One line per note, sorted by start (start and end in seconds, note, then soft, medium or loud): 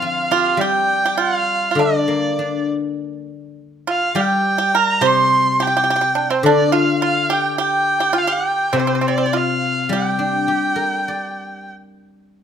0.00 1.18 F3 medium
0.00 0.90 C4 soft
0.00 0.28 F4 medium
0.00 1.19 F4 soft
0.00 0.63 F5 medium
0.31 0.58 F4 medium
0.31 1.48 G4 soft
0.57 2.36 G3 medium
0.57 1.23 G5 medium
0.61 1.01 G4 medium
1.06 1.17 G4 medium
1.17 1.67 F4 medium
1.22 1.82 F5 medium
1.71 1.78 F4 soft
1.75 3.56 D3 soft
1.75 2.65 D4 medium
1.80 2.69 D5 medium
2.08 3.28 A#3 soft
2.39 3.58 D4 soft
3.87 4.14 F4 medium
3.87 4.22 F5 medium
4.15 5.87 G3 medium
4.15 4.57 G4 medium
4.20 4.78 G5 medium
4.58 4.72 G4 medium
4.75 5.01 A#4 medium
4.75 5.08 A#5 loud
5.01 6.43 C3 medium
5.01 5.55 C5 medium
5.07 5.64 C6 loud
5.60 5.66 G4 medium
5.60 6.33 G5 loud
5.67 5.74 G4 medium
5.77 5.82 G4 medium
5.84 5.89 G4 medium
5.90 5.95 G4 medium
5.96 6.00 G4 medium
6.01 6.08 G4 medium
6.15 6.29 D4 medium
6.30 6.43 C4 medium
6.30 6.45 C5 medium
6.43 8.15 D3 medium
6.43 6.72 D4 medium
6.43 6.74 D5 medium
6.72 6.99 F4 medium
6.72 7.01 F5 medium
7.02 7.28 F4 medium
7.02 7.35 F5 medium
7.30 7.56 G4 medium
7.30 7.60 G5 medium
7.58 7.98 G4 medium
7.58 8.20 G5 medium
8.00 8.14 G4 medium
8.13 8.27 F4 medium
8.18 8.34 F5 loud
8.27 8.69 G4 medium
8.32 8.79 G5 medium
8.73 10.48 C3 medium
8.73 8.78 C4 medium
8.78 8.86 C4 soft
8.78 9.09 C5 medium
8.87 8.94 C4 medium
8.95 9.00 C4 soft
9.01 9.07 C4 medium
9.07 9.16 C4 medium
9.07 9.39 D5 medium
9.18 9.25 C4 soft
9.26 9.32 G4 soft
9.33 9.87 F4 medium
9.33 9.94 F5 medium
9.89 11.69 G3 medium
9.89 11.66 G4 medium
9.89 11.71 G5 medium
10.19 11.38 D4 soft
10.48 11.69 G4 soft
10.76 11.98 A#4 soft
11.08 12.30 D5 soft